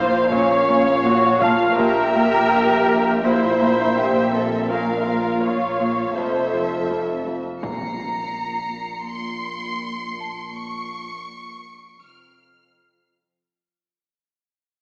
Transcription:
Already playing: A#1 A#2 A#3 F4 C5 F5 C6 D6
0.30 A#2 C#4 C#5 E6, taiko
0.68 A#3
1.04 A#2 F#4
1.41 A#2 F4 F5 A5, taiko
1.78 A#1 A#2 G4 A#4 E5, taiko
2.14 A#3 G4
2.51 A#2
2.88 A#2, taiko
3.24 A#2 E4 C5 E5
3.60 A#3 A#5
3.96 A#2 G4
4.32 A#2 C4 A4
4.69 A#2 C#4 A#4 F5
5.06 A#3 F4 C5
5.43 A#2 C#5 F5
5.80 A#2
6.16 F1 F2 A4 C5 E5
6.53 F3
6.90 F2
7.27 F2
7.61 A#1 A#2 A#5 C7 C#7, impact
7.99 A#5
9.10 C6
10.20 A5
10.56 C#6
11.16 D7
12.02 F1 F2 F6

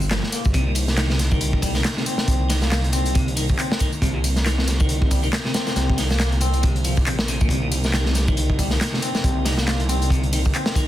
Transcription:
Already playing: G1
0.01 tambourine
0.11 F3, snare, clap, closed hi-hat, tambourine
0.23 snare
0.32 A#3, closed hi-hat, ride, tambourine
0.45 G1, kick, tambourine
0.54 C2 C3 A#3 D#4, kick, closed hi-hat, tambourine
0.67 A#2
0.75 closed hi-hat, ride, tambourine
0.88 snare, tambourine
0.97 D#3, snare, clap, closed hi-hat, tambourine
1.10 C3, snare
1.19 snare, closed hi-hat, ride, tambourine
1.31 D#3, kick, tambourine
1.41 closed hi-hat, tambourine
1.53 kick
1.62 G3, kick, closed hi-hat, ride, tambourine
1.75 D#3, snare, tambourine
1.84 snare, clap, closed hi-hat, tambourine
1.97 C3, snare
2.06 C4, closed hi-hat, ride, tambourine
2.18 snare, tambourine
2.28 C2, kick, closed hi-hat, tambourine
2.50 D#3, snare, closed hi-hat, ride, tambourine
2.62 A#3, snare, tambourine
2.71 A#3, snare, clap, closed hi-hat, tambourine
2.84 closed hi-hat
2.93 C4, closed hi-hat, ride, tambourine
3.06 closed hi-hat, tambourine
3.15 C3, kick, closed hi-hat, tambourine
3.28 closed hi-hat
3.36 D#3, closed hi-hat, ride, tambourine
3.49 kick, tambourine
3.58 C4, clap, closed hi-hat, tambourine
3.72 snare
3.79 D#3, kick, closed hi-hat, ride, tambourine
3.93 tambourine
4.02 C2 C3 C4, kick, closed hi-hat, tambourine
4.14 A#2
4.24 closed hi-hat, ride, tambourine
4.36 snare, tambourine
4.45 D#3, snare, clap, closed hi-hat, tambourine
4.58 C3, snare
4.68 snare, closed hi-hat, ride, tambourine
4.80 D#3, kick, tambourine
4.89 closed hi-hat, tambourine
5.02 kick
5.11 G3, kick, closed hi-hat, ride, tambourine
5.23 D#3, tambourine
5.33 snare, clap, closed hi-hat, tambourine
5.45 C3, snare
5.54 C4, snare, closed hi-hat, ride, tambourine
5.67 snare, tambourine
5.76 C2, snare, closed hi-hat, tambourine
5.90 kick
5.98 D#3, snare, closed hi-hat, ride, tambourine
6.10 A#3, snare, tambourine
6.19 A#3, snare, clap, closed hi-hat, tambourine
6.32 closed hi-hat
6.41 C4, closed hi-hat, ride, tambourine
6.53 closed hi-hat, tambourine
6.63 C3, kick, closed hi-hat, tambourine
6.76 closed hi-hat
6.84 F3, closed hi-hat, ride, tambourine
6.97 kick, tambourine
7.06 A#1 C3, clap, closed hi-hat, tambourine
7.19 snare
7.28 C3, closed hi-hat, ride, tambourine
7.41 A#2, kick, tambourine
7.49 C2 C3 D#4, kick, closed hi-hat, tambourine
7.63 A#2
7.72 closed hi-hat, ride, tambourine
7.84 snare, tambourine
7.93 D#3, snare, clap, closed hi-hat, tambourine
8.06 C3, snare
8.15 snare, closed hi-hat, ride, tambourine
8.28 D#3, kick, tambourine
8.37 closed hi-hat, tambourine
8.50 kick
8.59 G3, kick, closed hi-hat, ride, tambourine
8.71 D#3, snare, tambourine
8.81 snare, clap, closed hi-hat, tambourine
8.93 C3, snare
9.02 C4, closed hi-hat, ride, tambourine
9.15 snare, tambourine
9.24 C2, kick, closed hi-hat, tambourine
9.45 D#3, snare, closed hi-hat, ride, tambourine
9.58 A#3, snare, tambourine
9.67 A#3, snare, clap, closed hi-hat, tambourine
9.80 closed hi-hat
9.89 C4, closed hi-hat, ride, tambourine
10.02 closed hi-hat, tambourine
10.10 C3, kick, closed hi-hat, tambourine
10.23 closed hi-hat
10.33 D#3, closed hi-hat, ride, tambourine
10.45 kick, tambourine
10.54 C4, clap, closed hi-hat, tambourine
10.66 snare
10.76 D#3, kick, closed hi-hat, ride, tambourine

